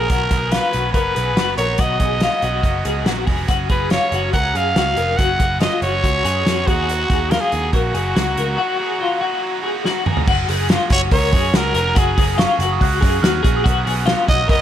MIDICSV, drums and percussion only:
0, 0, Header, 1, 2, 480
1, 0, Start_track
1, 0, Key_signature, 6, "major"
1, 0, Tempo, 423430
1, 113, Time_signature, 4, 2, 24, 8
1, 16568, End_track
2, 0, Start_track
2, 0, Title_t, "Drums"
2, 109, Note_on_c, 9, 42, 93
2, 112, Note_on_c, 9, 36, 107
2, 223, Note_off_c, 9, 42, 0
2, 226, Note_off_c, 9, 36, 0
2, 349, Note_on_c, 9, 42, 63
2, 350, Note_on_c, 9, 36, 84
2, 462, Note_off_c, 9, 42, 0
2, 463, Note_off_c, 9, 36, 0
2, 584, Note_on_c, 9, 42, 80
2, 596, Note_on_c, 9, 38, 102
2, 698, Note_off_c, 9, 42, 0
2, 709, Note_off_c, 9, 38, 0
2, 829, Note_on_c, 9, 42, 78
2, 943, Note_off_c, 9, 42, 0
2, 1067, Note_on_c, 9, 36, 80
2, 1068, Note_on_c, 9, 42, 70
2, 1180, Note_off_c, 9, 36, 0
2, 1181, Note_off_c, 9, 42, 0
2, 1317, Note_on_c, 9, 42, 70
2, 1430, Note_off_c, 9, 42, 0
2, 1553, Note_on_c, 9, 38, 93
2, 1553, Note_on_c, 9, 42, 70
2, 1666, Note_off_c, 9, 38, 0
2, 1666, Note_off_c, 9, 42, 0
2, 1788, Note_on_c, 9, 42, 70
2, 1902, Note_off_c, 9, 42, 0
2, 2017, Note_on_c, 9, 42, 98
2, 2026, Note_on_c, 9, 36, 98
2, 2130, Note_off_c, 9, 42, 0
2, 2140, Note_off_c, 9, 36, 0
2, 2265, Note_on_c, 9, 42, 63
2, 2266, Note_on_c, 9, 36, 80
2, 2378, Note_off_c, 9, 42, 0
2, 2379, Note_off_c, 9, 36, 0
2, 2498, Note_on_c, 9, 42, 77
2, 2510, Note_on_c, 9, 38, 107
2, 2612, Note_off_c, 9, 42, 0
2, 2623, Note_off_c, 9, 38, 0
2, 2747, Note_on_c, 9, 42, 82
2, 2860, Note_off_c, 9, 42, 0
2, 2986, Note_on_c, 9, 36, 81
2, 2989, Note_on_c, 9, 42, 67
2, 3099, Note_off_c, 9, 36, 0
2, 3103, Note_off_c, 9, 42, 0
2, 3231, Note_on_c, 9, 42, 69
2, 3344, Note_off_c, 9, 42, 0
2, 3469, Note_on_c, 9, 38, 91
2, 3469, Note_on_c, 9, 42, 70
2, 3583, Note_off_c, 9, 38, 0
2, 3583, Note_off_c, 9, 42, 0
2, 3709, Note_on_c, 9, 46, 71
2, 3712, Note_on_c, 9, 36, 91
2, 3822, Note_off_c, 9, 46, 0
2, 3825, Note_off_c, 9, 36, 0
2, 3949, Note_on_c, 9, 42, 91
2, 3952, Note_on_c, 9, 36, 99
2, 4062, Note_off_c, 9, 42, 0
2, 4066, Note_off_c, 9, 36, 0
2, 4189, Note_on_c, 9, 42, 64
2, 4191, Note_on_c, 9, 36, 85
2, 4302, Note_off_c, 9, 42, 0
2, 4305, Note_off_c, 9, 36, 0
2, 4423, Note_on_c, 9, 42, 78
2, 4435, Note_on_c, 9, 38, 97
2, 4537, Note_off_c, 9, 42, 0
2, 4548, Note_off_c, 9, 38, 0
2, 4669, Note_on_c, 9, 42, 73
2, 4783, Note_off_c, 9, 42, 0
2, 4913, Note_on_c, 9, 42, 62
2, 4914, Note_on_c, 9, 36, 78
2, 5027, Note_off_c, 9, 36, 0
2, 5027, Note_off_c, 9, 42, 0
2, 5161, Note_on_c, 9, 42, 74
2, 5275, Note_off_c, 9, 42, 0
2, 5398, Note_on_c, 9, 38, 104
2, 5398, Note_on_c, 9, 42, 72
2, 5511, Note_off_c, 9, 38, 0
2, 5511, Note_off_c, 9, 42, 0
2, 5634, Note_on_c, 9, 42, 63
2, 5747, Note_off_c, 9, 42, 0
2, 5880, Note_on_c, 9, 36, 98
2, 5880, Note_on_c, 9, 42, 97
2, 5993, Note_off_c, 9, 42, 0
2, 5994, Note_off_c, 9, 36, 0
2, 6119, Note_on_c, 9, 42, 60
2, 6120, Note_on_c, 9, 36, 85
2, 6232, Note_off_c, 9, 42, 0
2, 6233, Note_off_c, 9, 36, 0
2, 6354, Note_on_c, 9, 42, 84
2, 6366, Note_on_c, 9, 38, 107
2, 6467, Note_off_c, 9, 42, 0
2, 6479, Note_off_c, 9, 38, 0
2, 6599, Note_on_c, 9, 42, 77
2, 6712, Note_off_c, 9, 42, 0
2, 6842, Note_on_c, 9, 36, 77
2, 6849, Note_on_c, 9, 42, 66
2, 6955, Note_off_c, 9, 36, 0
2, 6962, Note_off_c, 9, 42, 0
2, 7090, Note_on_c, 9, 42, 70
2, 7204, Note_off_c, 9, 42, 0
2, 7329, Note_on_c, 9, 38, 94
2, 7329, Note_on_c, 9, 42, 74
2, 7442, Note_off_c, 9, 38, 0
2, 7442, Note_off_c, 9, 42, 0
2, 7567, Note_on_c, 9, 36, 90
2, 7568, Note_on_c, 9, 42, 63
2, 7680, Note_off_c, 9, 36, 0
2, 7681, Note_off_c, 9, 42, 0
2, 7814, Note_on_c, 9, 42, 100
2, 7927, Note_off_c, 9, 42, 0
2, 8048, Note_on_c, 9, 36, 88
2, 8052, Note_on_c, 9, 42, 63
2, 8161, Note_off_c, 9, 36, 0
2, 8165, Note_off_c, 9, 42, 0
2, 8287, Note_on_c, 9, 42, 75
2, 8298, Note_on_c, 9, 38, 106
2, 8400, Note_off_c, 9, 42, 0
2, 8412, Note_off_c, 9, 38, 0
2, 8525, Note_on_c, 9, 42, 80
2, 8639, Note_off_c, 9, 42, 0
2, 8764, Note_on_c, 9, 36, 82
2, 8765, Note_on_c, 9, 42, 62
2, 8877, Note_off_c, 9, 36, 0
2, 8879, Note_off_c, 9, 42, 0
2, 9008, Note_on_c, 9, 42, 77
2, 9122, Note_off_c, 9, 42, 0
2, 9256, Note_on_c, 9, 38, 99
2, 9256, Note_on_c, 9, 42, 73
2, 9370, Note_off_c, 9, 38, 0
2, 9370, Note_off_c, 9, 42, 0
2, 9493, Note_on_c, 9, 42, 66
2, 9606, Note_off_c, 9, 42, 0
2, 11169, Note_on_c, 9, 38, 52
2, 11282, Note_off_c, 9, 38, 0
2, 11405, Note_on_c, 9, 45, 86
2, 11518, Note_off_c, 9, 45, 0
2, 11528, Note_on_c, 9, 43, 82
2, 11641, Note_off_c, 9, 43, 0
2, 11648, Note_on_c, 9, 36, 110
2, 11648, Note_on_c, 9, 49, 97
2, 11761, Note_off_c, 9, 36, 0
2, 11761, Note_off_c, 9, 49, 0
2, 11886, Note_on_c, 9, 44, 66
2, 11887, Note_on_c, 9, 46, 77
2, 11999, Note_off_c, 9, 44, 0
2, 12001, Note_off_c, 9, 46, 0
2, 12117, Note_on_c, 9, 46, 89
2, 12124, Note_on_c, 9, 44, 65
2, 12129, Note_on_c, 9, 38, 113
2, 12230, Note_off_c, 9, 46, 0
2, 12237, Note_off_c, 9, 44, 0
2, 12242, Note_off_c, 9, 38, 0
2, 12356, Note_on_c, 9, 46, 89
2, 12360, Note_on_c, 9, 44, 68
2, 12361, Note_on_c, 9, 36, 100
2, 12470, Note_off_c, 9, 46, 0
2, 12474, Note_off_c, 9, 44, 0
2, 12475, Note_off_c, 9, 36, 0
2, 12599, Note_on_c, 9, 44, 62
2, 12599, Note_on_c, 9, 46, 76
2, 12600, Note_on_c, 9, 36, 89
2, 12712, Note_off_c, 9, 44, 0
2, 12712, Note_off_c, 9, 46, 0
2, 12713, Note_off_c, 9, 36, 0
2, 12836, Note_on_c, 9, 44, 65
2, 12837, Note_on_c, 9, 46, 84
2, 12843, Note_on_c, 9, 36, 99
2, 12949, Note_off_c, 9, 44, 0
2, 12951, Note_off_c, 9, 46, 0
2, 12956, Note_off_c, 9, 36, 0
2, 13078, Note_on_c, 9, 38, 106
2, 13078, Note_on_c, 9, 44, 68
2, 13078, Note_on_c, 9, 46, 76
2, 13191, Note_off_c, 9, 38, 0
2, 13191, Note_off_c, 9, 44, 0
2, 13191, Note_off_c, 9, 46, 0
2, 13314, Note_on_c, 9, 46, 78
2, 13316, Note_on_c, 9, 44, 61
2, 13428, Note_off_c, 9, 46, 0
2, 13430, Note_off_c, 9, 44, 0
2, 13559, Note_on_c, 9, 46, 108
2, 13560, Note_on_c, 9, 44, 68
2, 13563, Note_on_c, 9, 36, 114
2, 13673, Note_off_c, 9, 44, 0
2, 13673, Note_off_c, 9, 46, 0
2, 13676, Note_off_c, 9, 36, 0
2, 13803, Note_on_c, 9, 44, 67
2, 13804, Note_on_c, 9, 36, 99
2, 13804, Note_on_c, 9, 46, 74
2, 13916, Note_off_c, 9, 44, 0
2, 13917, Note_off_c, 9, 36, 0
2, 13918, Note_off_c, 9, 46, 0
2, 14036, Note_on_c, 9, 46, 88
2, 14043, Note_on_c, 9, 44, 67
2, 14047, Note_on_c, 9, 38, 117
2, 14149, Note_off_c, 9, 46, 0
2, 14156, Note_off_c, 9, 44, 0
2, 14161, Note_off_c, 9, 38, 0
2, 14281, Note_on_c, 9, 46, 89
2, 14285, Note_on_c, 9, 44, 66
2, 14394, Note_off_c, 9, 46, 0
2, 14399, Note_off_c, 9, 44, 0
2, 14523, Note_on_c, 9, 36, 85
2, 14527, Note_on_c, 9, 44, 59
2, 14527, Note_on_c, 9, 46, 71
2, 14636, Note_off_c, 9, 36, 0
2, 14641, Note_off_c, 9, 44, 0
2, 14641, Note_off_c, 9, 46, 0
2, 14765, Note_on_c, 9, 36, 94
2, 14766, Note_on_c, 9, 44, 65
2, 14767, Note_on_c, 9, 46, 84
2, 14878, Note_off_c, 9, 36, 0
2, 14879, Note_off_c, 9, 44, 0
2, 14881, Note_off_c, 9, 46, 0
2, 15007, Note_on_c, 9, 38, 107
2, 15007, Note_on_c, 9, 46, 81
2, 15008, Note_on_c, 9, 44, 65
2, 15121, Note_off_c, 9, 38, 0
2, 15121, Note_off_c, 9, 44, 0
2, 15121, Note_off_c, 9, 46, 0
2, 15241, Note_on_c, 9, 36, 99
2, 15242, Note_on_c, 9, 46, 77
2, 15244, Note_on_c, 9, 44, 68
2, 15354, Note_off_c, 9, 36, 0
2, 15355, Note_off_c, 9, 46, 0
2, 15357, Note_off_c, 9, 44, 0
2, 15482, Note_on_c, 9, 36, 114
2, 15486, Note_on_c, 9, 46, 105
2, 15487, Note_on_c, 9, 44, 65
2, 15595, Note_off_c, 9, 36, 0
2, 15599, Note_off_c, 9, 46, 0
2, 15600, Note_off_c, 9, 44, 0
2, 15722, Note_on_c, 9, 44, 68
2, 15723, Note_on_c, 9, 46, 76
2, 15835, Note_off_c, 9, 44, 0
2, 15836, Note_off_c, 9, 46, 0
2, 15944, Note_on_c, 9, 46, 86
2, 15951, Note_on_c, 9, 44, 62
2, 15956, Note_on_c, 9, 38, 116
2, 16058, Note_off_c, 9, 46, 0
2, 16064, Note_off_c, 9, 44, 0
2, 16069, Note_off_c, 9, 38, 0
2, 16193, Note_on_c, 9, 36, 91
2, 16193, Note_on_c, 9, 46, 83
2, 16197, Note_on_c, 9, 44, 69
2, 16306, Note_off_c, 9, 36, 0
2, 16306, Note_off_c, 9, 46, 0
2, 16310, Note_off_c, 9, 44, 0
2, 16429, Note_on_c, 9, 36, 93
2, 16433, Note_on_c, 9, 44, 60
2, 16433, Note_on_c, 9, 46, 76
2, 16542, Note_off_c, 9, 36, 0
2, 16546, Note_off_c, 9, 44, 0
2, 16546, Note_off_c, 9, 46, 0
2, 16568, End_track
0, 0, End_of_file